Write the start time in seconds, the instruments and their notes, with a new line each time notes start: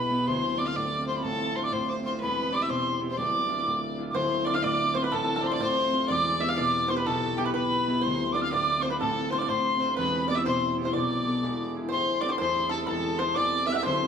Already playing: harp E1 B1 B2 B3 D4 E4 G4, fiddle B4, tin whistle B5
0.10 harp B3 E4 G4
0.26 harp D1 D2, fiddle C5, tin whistle C6
0.58 harp C4 D4 F4, fiddle D5, tin whistle D6
0.66 fiddle F5, tin whistle F6
0.76 harp A2, fiddle D5, tin whistle D6
1.07 harp C4 D4 F4, fiddle C5, tin whistle C6
1.16 tin whistle B5
1.23 harp A1 A2, fiddle A4, tin whistle A5
1.55 harp C4 D4 F4, fiddle C5, tin whistle C6
1.63 fiddle D5, tin whistle D6
1.72 harp A2, fiddle C5, tin whistle C6
1.88 fiddle C5, tin whistle D6
2.03 harp C4 D4 F4, fiddle C5, tin whistle C6
2.21 harp E1 E2, fiddle B4, tin whistle B5
2.52 harp B3 E4 G4, fiddle D5, tin whistle D6
2.62 fiddle E5, tin whistle E6
2.70 harp B2, fiddle C5, tin whistle C6
3.00 harp B3 E4 G4
3.10 fiddle C5, tin whistle C6
3.17 harp D1 D2, fiddle D5, tin whistle D6
3.48 harp D4 E4 F4
3.67 harp A2
3.96 harp D4 E4
4.01 harp F4
4.10 harp D1, tin whistle D6
4.15 harp D2, five-string banjo C5, fiddle C5, tin whistle C6
4.45 harp C4 D4 F4, fiddle D5, five-string banjo D5, tin whistle D6
4.54 fiddle F5, five-string banjo F5, tin whistle F6
4.63 harp A2, fiddle D5, five-string banjo D5, tin whistle D6
4.94 harp C4 D4 F4, fiddle C5, five-string banjo C5, tin whistle C6
5.02 fiddle B4, five-string banjo B4, tin whistle B5
5.12 harp A1 A2, five-string banjo A4, fiddle A4, tin whistle A5
5.24 five-string banjo A4
5.36 five-string banjo A4
5.41 harp C4 D4, fiddle C5 D5
5.45 harp F4, tin whistle C6
5.52 five-string banjo D5, fiddle D5, tin whistle D6
5.60 harp A2, five-string banjo C5, fiddle C5, tin whistle C6
5.92 harp C4 D4 F4
6.08 harp E1 E2, five-string banjo D5, fiddle D5, tin whistle D6
6.40 harp B3 E4 G4, five-string banjo E5, fiddle E5, tin whistle E6
6.49 five-string banjo F5, fiddle F5, tin whistle F6
6.57 harp B2, fiddle D5, five-string banjo D5, tin whistle D6
6.88 harp B3 E4 G4, five-string banjo C5, fiddle C5, tin whistle C6
6.96 five-string banjo B4, fiddle B4, tin whistle B5
7.06 harp B1 B2, fiddle A4, five-string banjo A4, tin whistle A5
7.36 harp B3 E4 G4, fiddle G4, five-string banjo G4, tin whistle G5
7.44 five-string banjo B4, fiddle B4, tin whistle B5
7.52 harp B2, five-string banjo B4, fiddle B4, tin whistle B5
7.87 harp B3 E4 G4
8.01 five-string banjo C5, fiddle C5, tin whistle C6
8.06 harp D1 D2
8.32 harp C4, five-string banjo D5, fiddle D5, tin whistle D6
8.36 harp D4 F4
8.41 fiddle F5, tin whistle F6
8.50 harp A2, five-string banjo D5, fiddle D5, tin whistle D6
8.81 harp C4 D4, five-string banjo C5, fiddle C5, tin whistle C6
8.85 harp F4, tin whistle B5
8.90 five-string banjo B4
8.99 harp A1 A2, five-string banjo A4, fiddle A4, tin whistle A5
9.30 harp C4 D4 F4, fiddle C5, five-string banjo C5, tin whistle C6
9.38 fiddle D5, five-string banjo D5, tin whistle D6
9.48 harp A2, fiddle C5, five-string banjo C5, tin whistle C6
9.78 harp C4 D4, fiddle C5
9.84 harp F4
9.96 harp E1 E2, fiddle B4, five-string banjo B4, tin whistle B5
10.28 harp B3 E4 G4, five-string banjo D5, fiddle D5, tin whistle D6
10.35 fiddle E5, five-string banjo E5, tin whistle E6
10.45 harp B2, fiddle C5, five-string banjo C5, tin whistle C6
10.78 harp B3 E4 G4
10.83 fiddle C5, five-string banjo C5, tin whistle C6
10.93 harp B1 B2, five-string banjo D5, fiddle D5, tin whistle D6
11.26 harp B3 D4 A4
11.43 harp E1 E2
11.75 harp D4 E4 G#4
11.89 harp A2, five-string banjo C5, fiddle C5, tin whistle C6
11.93 harp A1
12.20 harp C4 G4 A4, fiddle D5, five-string banjo D5, tin whistle D6
12.29 five-string banjo C5, fiddle C5, tin whistle C6
12.38 harp E2, five-string banjo C5, fiddle C5, tin whistle C6
12.69 harp C4 G4 A4, five-string banjo A4, fiddle A4, tin whistle A5
12.84 five-string banjo A4, fiddle A4, tin whistle B5
12.88 harp E1 E2, tin whistle A5
13.17 harp C4, five-string banjo C5, fiddle C5, tin whistle C6
13.22 harp G4 A4
13.35 harp E2, five-string banjo D5, fiddle D5, tin whistle D6
13.67 harp C4 G4 A4, five-string banjo E5, fiddle E5, tin whistle E6
13.72 five-string banjo E5 F#5, tin whistle E6 F#6
13.77 fiddle E5
13.83 harp D1 D2, five-string banjo C5, fiddle C5, tin whistle C6